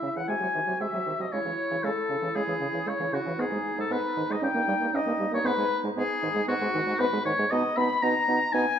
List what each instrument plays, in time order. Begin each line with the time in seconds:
Already playing: clarinet E4, oboe E5, flute E5
0.03 french horn C#3, bassoon C#3
0.16 bassoon C#3, french horn E3, flute F#5, oboe F#5
0.28 bassoon C3, french horn G#3, clarinet F#4, oboe G#5, flute G#5
0.41 bassoon C3, french horn F#3
0.54 bassoon C3, french horn D#3
0.67 bassoon C3, french horn F#3
0.80 bassoon C3, french horn G#3, oboe E5, flute E5
0.93 bassoon C3, french horn F#3
1.06 bassoon C3, french horn D#3
1.19 bassoon C3, french horn F#3, flute D#5, oboe D#5
1.32 bassoon C#3, french horn G#3, clarinet E4, oboe C#5, flute C#5
1.45 bassoon C#3, french horn E3
1.71 bassoon C#3, french horn E3
1.84 bassoon C#3, french horn G#3, oboe A4, flute A4
2.09 french horn C#3, bassoon C#3
2.22 bassoon C#3, french horn E3
2.35 bassoon C#3, french horn G#3, oboe G#4, flute G#4
2.48 bassoon C#3, french horn E3
2.60 french horn C#3, bassoon C#3
2.73 bassoon C#3, french horn E3
2.86 bassoon C#3, french horn G#3, flute C#5, oboe C#5
2.99 bassoon C#3, french horn E3
3.13 french horn C#3, bassoon C#3, oboe F#4, flute F#4
3.26 bassoon C#3, french horn E3
3.38 bassoon G#2, french horn B3, clarinet D#4, flute G#4, oboe G#4
3.52 bassoon G#2, french horn G#3
3.77 bassoon G#2, french horn G#3, flute A4, oboe A4
3.90 bassoon G#2, french horn B3, flute B4, oboe B4
4.17 bassoon G#2, french horn D#3
4.29 bassoon G#2, french horn G#3, flute D#5, oboe D#5
4.42 bassoon G2, french horn C#4, flute G5, oboe G5
4.54 bassoon G2, french horn A#3
4.68 bassoon G2, french horn G3
4.80 bassoon G2, french horn A#3
4.93 bassoon G2, french horn C#4, flute D#5, oboe D#5
5.06 bassoon G2, french horn A#3
5.20 bassoon G2, french horn G3
5.32 bassoon G2, french horn A#3, flute C#5, oboe C#5
5.45 bassoon G#2, french horn B3, oboe B4, flute B4
5.58 bassoon G#2, french horn G#3
5.83 bassoon G#2, french horn G#3
5.96 bassoon G#2, french horn B3, flute G#4, oboe G#4
6.23 bassoon G#2, french horn D#3
6.35 bassoon G#2, french horn G#3
6.47 bassoon G#2, french horn B3, oboe F#4, flute F#4
6.61 bassoon G#2, french horn G#3
6.75 bassoon G#2, french horn D#3
6.87 bassoon G#2, french horn G#3
6.99 bassoon G#2, french horn B3, oboe B4, flute B4
7.13 bassoon G#2, french horn G#3
7.25 bassoon G#2, french horn D#3, flute C#5, oboe C#5
7.39 bassoon G#2, french horn G#3
7.51 bassoon B2, french horn B3, clarinet D#4, flute D#5, oboe D#5
7.76 bassoon B2, french horn B3, clarinet D#4, flute B5, oboe B5
8.01 bassoon B2, french horn B3, clarinet D#4, flute A#5, oboe A#5
8.28 bassoon B2, french horn B3, clarinet D#4
8.53 bassoon B2, french horn B3, clarinet D#4, oboe G#5, flute G#5